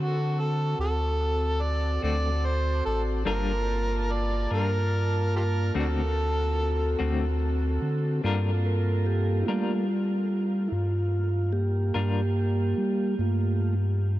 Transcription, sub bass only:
0, 0, Header, 1, 2, 480
1, 0, Start_track
1, 0, Key_signature, -2, "minor"
1, 0, Tempo, 827586
1, 1898, Time_signature, 12, 3, 24, 8
1, 8233, End_track
2, 0, Start_track
2, 0, Title_t, "Sub bass"
2, 0, Program_c, 0, 38
2, 0, Note_on_c, 0, 50, 90
2, 435, Note_off_c, 0, 50, 0
2, 457, Note_on_c, 0, 38, 77
2, 1155, Note_off_c, 0, 38, 0
2, 1180, Note_on_c, 0, 38, 99
2, 1636, Note_off_c, 0, 38, 0
2, 1661, Note_on_c, 0, 33, 84
2, 1881, Note_off_c, 0, 33, 0
2, 1895, Note_on_c, 0, 31, 107
2, 2595, Note_off_c, 0, 31, 0
2, 2616, Note_on_c, 0, 43, 97
2, 3315, Note_off_c, 0, 43, 0
2, 3338, Note_on_c, 0, 38, 82
2, 4036, Note_off_c, 0, 38, 0
2, 4062, Note_on_c, 0, 38, 97
2, 4517, Note_off_c, 0, 38, 0
2, 4535, Note_on_c, 0, 50, 88
2, 4758, Note_off_c, 0, 50, 0
2, 4779, Note_on_c, 0, 43, 110
2, 5476, Note_off_c, 0, 43, 0
2, 5500, Note_on_c, 0, 55, 98
2, 6195, Note_off_c, 0, 55, 0
2, 6217, Note_on_c, 0, 43, 83
2, 6913, Note_off_c, 0, 43, 0
2, 6933, Note_on_c, 0, 43, 94
2, 7391, Note_off_c, 0, 43, 0
2, 7410, Note_on_c, 0, 55, 89
2, 7633, Note_off_c, 0, 55, 0
2, 7650, Note_on_c, 0, 43, 107
2, 8233, Note_off_c, 0, 43, 0
2, 8233, End_track
0, 0, End_of_file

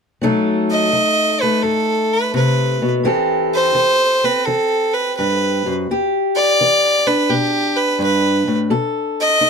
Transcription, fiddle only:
0, 0, Header, 1, 2, 480
1, 0, Start_track
1, 0, Tempo, 707547
1, 151, Time_signature, 4, 2, 24, 8
1, 6444, End_track
2, 0, Start_track
2, 0, Title_t, "Fiddle"
2, 0, Program_c, 0, 110
2, 481, Note_on_c, 0, 75, 89
2, 958, Note_on_c, 0, 71, 75
2, 968, Note_off_c, 0, 75, 0
2, 1104, Note_on_c, 0, 69, 73
2, 1114, Note_off_c, 0, 71, 0
2, 1447, Note_on_c, 0, 71, 72
2, 1457, Note_off_c, 0, 69, 0
2, 1592, Note_off_c, 0, 71, 0
2, 1596, Note_on_c, 0, 71, 60
2, 1971, Note_off_c, 0, 71, 0
2, 2402, Note_on_c, 0, 72, 94
2, 2881, Note_on_c, 0, 71, 81
2, 2891, Note_off_c, 0, 72, 0
2, 3022, Note_on_c, 0, 69, 82
2, 3032, Note_off_c, 0, 71, 0
2, 3346, Note_on_c, 0, 71, 73
2, 3356, Note_off_c, 0, 69, 0
2, 3504, Note_off_c, 0, 71, 0
2, 3508, Note_on_c, 0, 71, 68
2, 3886, Note_off_c, 0, 71, 0
2, 4312, Note_on_c, 0, 74, 98
2, 4794, Note_on_c, 0, 71, 82
2, 4804, Note_off_c, 0, 74, 0
2, 4954, Note_on_c, 0, 67, 80
2, 4964, Note_off_c, 0, 71, 0
2, 5268, Note_on_c, 0, 71, 73
2, 5278, Note_off_c, 0, 67, 0
2, 5426, Note_off_c, 0, 71, 0
2, 5450, Note_on_c, 0, 71, 66
2, 5814, Note_off_c, 0, 71, 0
2, 6246, Note_on_c, 0, 75, 102
2, 6444, Note_off_c, 0, 75, 0
2, 6444, End_track
0, 0, End_of_file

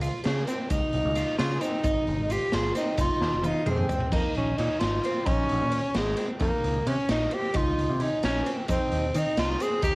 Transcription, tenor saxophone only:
0, 0, Header, 1, 2, 480
1, 0, Start_track
1, 0, Tempo, 455927
1, 751, Time_signature, 5, 3, 24, 8
1, 10475, End_track
2, 0, Start_track
2, 0, Title_t, "Tenor saxophone"
2, 0, Program_c, 0, 66
2, 503, Note_on_c, 0, 60, 70
2, 737, Note_on_c, 0, 63, 84
2, 753, Note_off_c, 0, 60, 0
2, 1447, Note_off_c, 0, 63, 0
2, 1453, Note_on_c, 0, 65, 89
2, 1694, Note_on_c, 0, 63, 93
2, 1710, Note_off_c, 0, 65, 0
2, 2445, Note_on_c, 0, 67, 94
2, 2460, Note_off_c, 0, 63, 0
2, 2674, Note_on_c, 0, 65, 102
2, 2690, Note_off_c, 0, 67, 0
2, 2908, Note_off_c, 0, 65, 0
2, 2914, Note_on_c, 0, 63, 83
2, 3136, Note_off_c, 0, 63, 0
2, 3166, Note_on_c, 0, 65, 95
2, 3647, Note_on_c, 0, 63, 91
2, 3663, Note_off_c, 0, 65, 0
2, 3879, Note_off_c, 0, 63, 0
2, 3899, Note_on_c, 0, 60, 80
2, 4332, Note_off_c, 0, 60, 0
2, 4349, Note_on_c, 0, 58, 74
2, 4573, Note_off_c, 0, 58, 0
2, 4601, Note_on_c, 0, 61, 82
2, 4813, Note_on_c, 0, 63, 80
2, 4829, Note_off_c, 0, 61, 0
2, 5050, Note_on_c, 0, 65, 90
2, 5066, Note_off_c, 0, 63, 0
2, 5539, Note_on_c, 0, 61, 93
2, 5554, Note_off_c, 0, 65, 0
2, 6264, Note_off_c, 0, 61, 0
2, 6286, Note_on_c, 0, 56, 82
2, 6614, Note_off_c, 0, 56, 0
2, 6751, Note_on_c, 0, 58, 88
2, 7244, Note_on_c, 0, 61, 90
2, 7259, Note_off_c, 0, 58, 0
2, 7477, Note_off_c, 0, 61, 0
2, 7484, Note_on_c, 0, 63, 91
2, 7726, Note_on_c, 0, 67, 90
2, 7742, Note_off_c, 0, 63, 0
2, 7965, Note_on_c, 0, 65, 95
2, 7981, Note_off_c, 0, 67, 0
2, 8446, Note_on_c, 0, 63, 85
2, 8462, Note_off_c, 0, 65, 0
2, 8673, Note_off_c, 0, 63, 0
2, 8680, Note_on_c, 0, 61, 90
2, 9010, Note_off_c, 0, 61, 0
2, 9174, Note_on_c, 0, 60, 91
2, 9660, Note_on_c, 0, 63, 90
2, 9676, Note_off_c, 0, 60, 0
2, 9886, Note_on_c, 0, 65, 94
2, 9902, Note_off_c, 0, 63, 0
2, 10127, Note_on_c, 0, 68, 93
2, 10142, Note_off_c, 0, 65, 0
2, 10348, Note_off_c, 0, 68, 0
2, 10354, Note_on_c, 0, 67, 106
2, 10475, Note_off_c, 0, 67, 0
2, 10475, End_track
0, 0, End_of_file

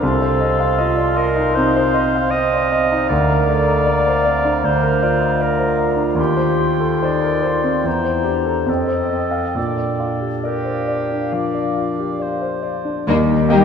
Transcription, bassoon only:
0, 0, Header, 1, 2, 480
1, 0, Start_track
1, 0, Key_signature, -2, "major"
1, 0, Tempo, 770218
1, 12, Time_signature, 4, 2, 24, 8
1, 3852, Tempo, 832178
1, 5292, Tempo, 886263
1, 7212, Tempo, 862069
1, 8004, End_track
2, 0, Start_track
2, 0, Title_t, "Bassoon"
2, 0, Program_c, 0, 70
2, 7, Note_on_c, 0, 60, 56
2, 500, Note_on_c, 0, 65, 57
2, 509, Note_off_c, 0, 60, 0
2, 813, Note_off_c, 0, 65, 0
2, 979, Note_on_c, 0, 63, 47
2, 1214, Note_on_c, 0, 60, 50
2, 1223, Note_off_c, 0, 63, 0
2, 1926, Note_off_c, 0, 60, 0
2, 1930, Note_on_c, 0, 58, 48
2, 2168, Note_on_c, 0, 57, 44
2, 2177, Note_off_c, 0, 58, 0
2, 2405, Note_on_c, 0, 58, 47
2, 2415, Note_off_c, 0, 57, 0
2, 2654, Note_on_c, 0, 60, 50
2, 2664, Note_off_c, 0, 58, 0
2, 2899, Note_on_c, 0, 62, 45
2, 2908, Note_off_c, 0, 60, 0
2, 3136, Note_on_c, 0, 65, 54
2, 3145, Note_off_c, 0, 62, 0
2, 4334, Note_off_c, 0, 65, 0
2, 4338, Note_on_c, 0, 63, 41
2, 4580, Note_on_c, 0, 65, 46
2, 4589, Note_off_c, 0, 63, 0
2, 4815, Note_on_c, 0, 64, 38
2, 4824, Note_off_c, 0, 65, 0
2, 5052, Note_on_c, 0, 62, 39
2, 5060, Note_off_c, 0, 64, 0
2, 5297, Note_on_c, 0, 60, 34
2, 5305, Note_off_c, 0, 62, 0
2, 5605, Note_off_c, 0, 60, 0
2, 5774, Note_on_c, 0, 62, 34
2, 7434, Note_off_c, 0, 62, 0
2, 7691, Note_on_c, 0, 58, 55
2, 8004, Note_off_c, 0, 58, 0
2, 8004, End_track
0, 0, End_of_file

